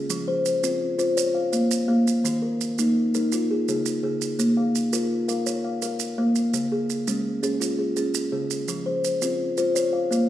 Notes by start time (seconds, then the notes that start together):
Already playing: G#4
0.10 F3, maracas
0.28 C5
0.46 maracas
0.63 C4 F4, maracas
0.98 F4 C5, maracas
1.17 C#5, maracas
1.35 F5
1.52 A#3 F5, maracas
1.71 maracas
1.88 A#3 F5
2.07 maracas
2.24 D#3, maracas
2.42 A#4
2.61 maracas
2.78 A#3 D#4, maracas
3.14 D#4 A#4, maracas
3.32 F4, maracas
3.51 G#4
3.68 C#3 G#4, maracas
3.86 maracas
4.03 C#3 G#4
4.21 maracas
4.39 A#3, maracas
4.57 F5
4.75 maracas
4.93 F4 A#4, maracas
5.28 A#4 F5, maracas
5.46 C#5, maracas
5.65 F5
5.82 A#4 F5, maracas
6.00 maracas
6.18 A#3 F5
6.35 maracas
6.54 C#3, maracas
6.72 G#4
6.90 maracas
7.07 G#3 C#4, maracas
7.43 C#4 G#4, maracas
7.60 F4, maracas
7.79 G#4
7.96 C#4 G#4, maracas
8.14 maracas
8.32 C#3 G#4
8.50 maracas
8.68 F3, maracas
8.86 C5
9.04 maracas
9.22 C4 F4, maracas
9.57 F4 C5, maracas
9.75 C#5, maracas
9.93 F5
10.11 A#3 F5, maracas